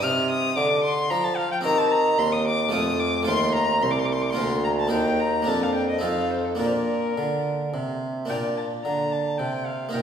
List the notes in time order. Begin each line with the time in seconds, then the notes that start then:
0.00 C3 D#4 G4 C5 F6
0.30 D#6
0.56 D3 D6
0.84 C6
1.10 F3 A#5
1.24 A5
1.36 F5
1.52 G5
1.61 C4 G4 C5 A#5
1.65 D#3
1.78 A5
1.92 A#5
2.19 D#2 C6
2.32 D#6
2.47 D6
2.68 A3 F4 C5
2.73 F2 D#6
3.00 D6
3.23 A3 F4 C5
3.27 D#2 C6
3.55 A#5
3.82 C2 C6
3.91 D6
3.99 C6
4.06 D6
4.12 C6
4.22 D6
4.30 A#3 F4 C6
4.35 D2 A#4
4.64 A#5
4.80 A5
4.87 D#2 A#3 D#4 C5
4.92 G5
5.20 A#5
5.42 A#3 D4 A#4
5.47 F2 A5
5.63 F5
5.75 G5
5.89 D#5
5.99 C4 D#4 A4
6.03 F2 F5
6.31 C5
6.45 A4
6.55 A#3 D4 F4 A#4
6.59 A#2
6.67 C5
6.73 A#4
7.17 D3
7.73 C3
8.25 A#3 D4 F4 G5
8.30 A#2
8.57 A5
8.84 D3 A#5
9.12 A5
9.38 C3 G5
9.66 F5
9.89 A#3 D#4 A#4
9.93 A#2 G5